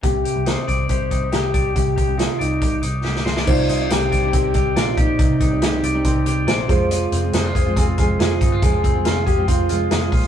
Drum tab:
CC |----------------|----------------|x---------------|----------------|
HH |x-x-x-x-x-x-x-x-|x-x-x-x-x-x-----|--x-x-x-x-x-x-x-|x-x-x-x-x-x-x-x-|
SD |----o-------o---|----o-------oooo|----o-------o---|----o-------o---|
BD |o-----o-o-o---o-|o-o-----o-------|o-----o-o-o---o-|o-o-----o-----o-|

CC |----------------|----------------|
HH |x-x-x-x-x-x-x-x-|x-x-x-x-x-x-x-o-|
SD |----o-------o---|----o-------o---|
BD |------o-o-o---o-|o-o---o-o-----o-|